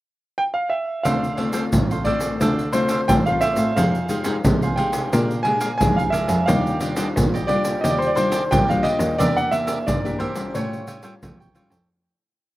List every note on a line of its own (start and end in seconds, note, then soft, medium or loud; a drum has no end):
0.38 0.43 G5 medium
0.54 0.72 F5 medium
0.70 1.06 E5 medium
1.03 1.63 D2 medium
1.03 1.71 D3 soft
1.03 1.26 A3 soft
1.03 1.26 C4 soft
1.03 1.36 D4 medium
1.03 1.26 F4 medium
1.03 1.37 A4 medium
1.03 1.37 C5 medium
1.03 1.69 F5 medium
1.03 1.38 F5 medium
1.03 pandeiro medium
1.03 shaker medium
1.03 surdo medium
1.24 pandeiro soft
1.24 shaker soft
1.37 1.50 A3 soft
1.37 1.51 C4 medium
1.37 1.52 D4 soft
1.37 1.51 F4 soft
1.37 1.52 A4 soft
1.37 1.53 C5 soft
1.37 1.53 F5 soft
1.37 pandeiro soft
1.53 2.01 A3 medium
1.53 2.01 C4 medium
1.53 1.64 D4 medium
1.53 2.01 F4 medium
1.53 1.64 A4 medium
1.53 1.64 C5 medium
1.53 1.64 F5 medium
1.53 pandeiro medium
1.53 shaker medium
1.73 2.02 A2 medium
1.73 2.38 A2 soft
1.73 pandeiro medium
1.73 shaker medium
1.73 surdo medium
1.91 2.05 A4 soft
1.91 2.05 C5 soft
1.91 2.06 F5 soft
1.91 pandeiro soft
1.91 shaker soft
2.04 2.36 A3 medium
2.04 2.36 C4 medium
2.04 2.39 D4 medium
2.04 2.36 F4 medium
2.04 2.40 A4 medium
2.04 2.40 C5 medium
2.04 2.76 D5 medium
2.04 2.40 F5 medium
2.04 pandeiro medium
2.04 surdo medium
2.21 pandeiro medium
2.21 shaker medium
2.41 2.99 D2 medium
2.41 3.06 D3 medium
2.41 2.62 A3 medium
2.41 2.62 C4 soft
2.41 2.72 D4 medium
2.41 2.62 F4 soft
2.41 2.73 A4 medium
2.41 2.73 C5 medium
2.41 2.74 F5 medium
2.41 pandeiro medium
2.41 shaker medium
2.41 surdo soft
2.59 pandeiro soft
2.59 shaker soft
2.73 3.03 A3 medium
2.73 3.03 C4 soft
2.73 2.88 D4 soft
2.73 3.04 F4 medium
2.73 2.88 A4 soft
2.73 3.09 C5 medium
2.73 2.88 C5 medium
2.73 2.89 F5 soft
2.73 pandeiro medium
2.73 shaker medium
2.89 3.00 D4 medium
2.89 3.00 A4 medium
2.89 3.00 C5 medium
2.89 3.00 F5 medium
2.89 pandeiro medium
2.89 shaker medium
3.08 3.74 A2 medium
3.08 3.53 A2 medium
3.08 3.21 A3 soft
3.08 3.21 C4 soft
3.08 3.25 D4 soft
3.08 3.21 F4 medium
3.08 3.25 A4 soft
3.08 3.26 C5 soft
3.08 3.26 F5 soft
3.08 3.13 G5 loud
3.08 pandeiro medium
3.08 shaker medium
3.08 surdo loud
3.26 3.72 A3 medium
3.26 3.73 C4 medium
3.26 3.73 F4 medium
3.26 3.41 A4 soft
3.26 3.41 C5 soft
3.26 3.44 F5 medium
3.26 3.41 F5 soft
3.26 pandeiro soft
3.26 shaker soft
3.41 3.58 D4 medium
3.41 3.58 A4 medium
3.41 3.57 C5 medium
3.41 3.77 E5 medium
3.41 3.56 F5 medium
3.41 pandeiro medium
3.41 shaker medium
3.56 3.73 A2 medium
3.56 3.75 A4 soft
3.56 3.75 C5 soft
3.56 3.75 F5 soft
3.56 pandeiro medium
3.56 shaker medium
3.76 4.35 F2 medium
3.76 4.42 F3 medium
3.76 3.97 G#3 medium
3.76 4.08 D#4 medium
3.76 3.98 D#4 soft
3.76 3.98 G4 medium
3.76 4.08 G#4 medium
3.76 4.09 C5 medium
3.76 4.41 F5 medium
3.76 4.09 F5 medium
3.76 pandeiro medium
3.76 shaker medium
3.76 surdo soft
3.95 pandeiro soft
3.95 shaker soft
4.09 4.22 G#3 medium
4.09 4.24 D#4 soft
4.09 4.22 D#4 medium
4.09 4.23 G4 medium
4.09 4.24 G#4 soft
4.09 4.24 C5 medium
4.09 4.24 F5 medium
4.09 pandeiro soft
4.09 shaker medium
4.24 4.39 G#3 medium
4.24 4.36 D#4 medium
4.24 4.39 D#4 medium
4.24 4.39 G4 medium
4.24 4.36 G#4 medium
4.24 4.36 C5 medium
4.24 4.36 F5 medium
4.24 pandeiro medium
4.24 shaker medium
4.45 4.74 C3 medium
4.45 5.10 C3 medium
4.45 4.65 G#3 medium
4.45 4.65 D#4 soft
4.45 4.66 G4 medium
4.45 pandeiro medium
4.45 shaker medium
4.45 surdo loud
4.62 4.76 G#4 soft
4.62 4.77 C5 soft
4.62 4.77 F5 soft
4.62 pandeiro soft
4.62 shaker soft
4.76 5.10 G#3 soft
4.76 5.11 D#4 medium
4.76 5.10 D#4 medium
4.76 5.10 G4 medium
4.76 5.11 G#4 medium
4.76 5.11 C5 medium
4.76 5.11 F5 medium
4.76 5.41 G5 medium
4.76 pandeiro soft
4.93 pandeiro medium
4.93 shaker medium
5.13 5.78 A#2 medium
5.13 5.71 A#2 medium
5.13 5.33 G#3 medium
5.13 5.43 D4 medium
5.13 5.33 D4 soft
5.13 5.34 G4 medium
5.13 5.44 A#4 medium
5.13 5.45 F5 medium
5.13 pandeiro medium
5.13 shaker medium
5.13 surdo soft
5.31 pandeiro soft
5.31 shaker soft
5.43 5.66 G#3 medium
5.43 5.59 D4 soft
5.43 5.66 D4 soft
5.43 5.67 G4 medium
5.43 5.59 A#4 medium
5.43 5.60 F5 soft
5.43 5.76 G#5 medium
5.43 5.60 G#5 soft
5.43 pandeiro medium
5.60 5.71 D4 medium
5.60 5.71 A#4 medium
5.60 5.71 F5 medium
5.60 5.72 G#5 medium
5.60 pandeiro medium
5.60 shaker medium
5.78 6.24 F2 medium
5.78 6.45 F3 medium
5.78 5.96 D4 soft
5.78 6.44 D4 medium
5.78 5.96 A#4 soft
5.78 5.97 F5 soft
5.78 5.95 G#5 medium
5.78 5.97 G#5 soft
5.78 pandeiro medium
5.78 shaker medium
5.78 surdo loud
5.82 6.43 G#3 soft
5.82 6.44 G4 medium
5.96 6.11 A#4 soft
5.96 6.01 F5 medium
5.96 6.12 F5 soft
5.96 6.12 G#5 soft
5.96 pandeiro soft
5.96 shaker soft
6.10 6.29 D4 medium
6.10 6.28 A#4 medium
6.10 6.44 E5 medium
6.10 6.27 F5 medium
6.10 6.27 G#5 medium
6.10 pandeiro medium
6.10 shaker medium
6.28 6.44 F2 medium
6.28 6.46 A#4 soft
6.28 6.46 F5 soft
6.28 6.45 G#5 soft
6.28 pandeiro medium
6.28 shaker medium
6.46 7.06 D#2 medium
6.46 7.13 D#3 medium
6.46 6.77 G3 medium
6.46 6.77 D4 medium
6.46 6.78 F4 medium
6.46 6.79 G4 medium
6.46 6.80 D5 medium
6.46 6.80 D#5 medium
6.46 7.11 F5 medium
6.46 pandeiro medium
6.46 shaker medium
6.46 surdo medium
6.67 pandeiro soft
6.67 shaker soft
6.80 6.93 G3 soft
6.80 6.95 D4 soft
6.80 6.94 D4 medium
6.80 6.94 F4 medium
6.80 6.95 G4 soft
6.80 6.96 D5 medium
6.80 6.96 D#5 soft
6.80 pandeiro medium
6.80 shaker medium
6.96 7.43 G3 medium
6.96 7.07 D4 medium
6.96 7.43 D4 medium
6.96 7.44 F4 medium
6.96 7.07 G4 medium
6.96 7.07 D5 medium
6.96 7.07 D#5 medium
6.96 pandeiro medium
6.96 shaker medium
7.16 7.80 A#2 medium
7.16 7.45 A#2 medium
7.16 pandeiro medium
7.16 shaker medium
7.16 surdo medium
7.34 7.47 G4 soft
7.34 7.47 D5 soft
7.34 7.50 D#5 soft
7.34 pandeiro soft
7.34 shaker soft
7.47 8.12 G3 medium
7.47 8.12 D4 medium
7.47 8.12 F4 medium
7.47 7.82 G4 medium
7.47 7.81 D5 medium
7.47 7.82 D5 medium
7.47 pandeiro medium
7.65 pandeiro medium
7.65 shaker medium
7.81 8.41 D#2 medium
7.81 8.48 D#3 medium
7.81 8.14 G4 medium
7.81 8.15 D5 medium
7.81 7.90 D#5 medium
7.81 8.15 D#5 medium
7.81 pandeiro medium
7.81 shaker medium
7.81 surdo soft
7.90 7.99 D5 medium
7.98 8.08 C5 medium
7.98 pandeiro soft
7.98 shaker soft
8.07 8.17 D5 medium
8.15 8.37 G3 soft
8.15 8.30 D4 soft
8.15 8.37 D4 medium
8.15 8.37 F4 medium
8.15 8.30 G4 soft
8.15 8.52 C5 medium
8.15 8.31 D5 soft
8.15 8.31 D#5 medium
8.15 pandeiro medium
8.15 shaker medium
8.31 8.42 D4 medium
8.31 8.42 G4 medium
8.31 8.42 D5 medium
8.31 8.42 D#5 medium
8.31 pandeiro medium
8.31 shaker medium
8.51 8.95 A#2 medium
8.51 9.16 A#2 soft
8.51 8.63 G3 soft
8.51 8.67 D4 soft
8.51 8.64 D4 soft
8.51 8.64 F4 medium
8.51 8.67 G4 soft
8.51 8.67 D5 soft
8.51 8.68 D#5 soft
8.51 8.67 G5 medium
8.51 pandeiro medium
8.51 shaker medium
8.51 surdo loud
8.68 9.15 G3 medium
8.68 9.15 D4 medium
8.68 9.15 F4 medium
8.68 8.82 G4 soft
8.68 8.83 D5 soft
8.68 8.83 D#5 soft
8.68 8.87 F5 medium
8.68 pandeiro soft
8.68 shaker soft
8.83 9.00 D4 medium
8.83 8.99 G4 medium
8.83 8.97 D5 medium
8.83 9.19 D#5 medium
8.83 8.98 D#5 medium
8.83 pandeiro medium
8.99 9.15 D#2 medium
8.99 9.17 G4 soft
8.99 9.16 D5 soft
8.99 9.16 D#5 soft
8.99 pandeiro medium
8.99 shaker medium
9.18 9.77 E2 medium
9.18 9.84 E3 soft
9.18 9.48 A#3 medium
9.18 9.48 D4 medium
9.18 9.51 G4 medium
9.18 9.48 G4 medium
9.18 9.51 A#4 medium
9.18 9.35 D5 medium
9.18 9.52 D5 medium
9.18 9.51 E5 medium
9.18 pandeiro medium
9.18 shaker medium
9.18 surdo soft
9.37 9.52 F#5 medium
9.37 pandeiro soft
9.37 shaker soft
9.51 9.98 A#3 medium
9.51 9.98 D4 medium
9.51 9.66 G4 soft
9.51 9.98 G4 medium
9.51 9.66 A#4 soft
9.51 9.67 D5 soft
9.51 9.87 E5 medium
9.51 9.66 E5 soft
9.51 pandeiro medium
9.51 shaker medium
9.67 9.77 G4 medium
9.67 9.78 A#4 medium
9.67 9.78 D5 medium
9.67 9.78 E5 medium
9.67 pandeiro medium
9.67 shaker medium
9.86 10.16 G2 medium
9.86 10.51 E3 medium
9.86 10.18 D5 medium
9.86 pandeiro medium
9.86 shaker medium
9.86 surdo loud
10.04 10.33 A#3 medium
10.04 10.33 D4 medium
10.04 10.33 G4 medium
10.04 10.19 A#4 soft
10.04 10.19 D5 soft
10.04 10.19 E5 soft
10.04 pandeiro soft
10.04 shaker soft
10.19 10.53 G4 medium
10.19 10.53 A#4 medium
10.19 10.55 C5 medium
10.19 10.53 D5 medium
10.19 10.53 E5 medium
10.19 pandeiro medium
10.19 surdo medium
10.35 10.99 G3 medium
10.35 10.99 C#4 medium
10.35 10.99 F4 medium
10.35 pandeiro medium
10.35 shaker medium
10.54 11.19 A2 medium
10.54 11.12 A2 medium
10.54 10.86 F4 medium
10.54 10.86 A4 medium
10.54 11.52 C#5 medium
10.54 10.87 C#5 medium
10.54 10.87 G5 medium
10.54 pandeiro medium
10.54 shaker medium
10.54 surdo soft
10.73 pandeiro soft
10.73 shaker soft
10.87 11.02 F4 soft
10.87 11.02 A4 soft
10.87 11.03 C#5 medium
10.87 11.03 G5 medium
10.87 pandeiro medium
10.87 shaker medium
11.03 11.50 G3 medium
11.03 11.50 C#4 soft
11.03 11.13 F4 medium
11.03 11.50 F4 medium
11.03 11.13 A4 medium
11.03 11.14 C#5 medium
11.03 11.14 G5 medium
11.03 pandeiro medium
11.03 shaker medium
11.22 11.66 F2 medium
11.22 11.87 A2 medium
11.22 11.38 F4 soft
11.22 11.38 A4 soft
11.22 11.39 C#5 soft
11.22 11.39 G5 soft
11.22 pandeiro medium
11.22 shaker medium
11.22 surdo loud
11.40 11.54 A4 soft
11.40 11.54 C#5 soft
11.40 11.55 G5 soft
11.40 pandeiro soft
11.40 shaker soft
11.55 11.76 G3 soft
11.55 11.76 C#4 soft
11.55 11.71 F4 medium
11.55 11.76 F4 medium
11.55 11.71 A4 medium
11.55 11.70 C#5 medium
11.55 11.69 G5 medium
11.55 pandeiro medium
11.55 shaker medium
11.70 11.86 F2 medium
11.70 11.88 A4 soft
11.70 11.88 C#5 soft
11.70 11.87 G5 soft
11.70 pandeiro medium
11.70 shaker medium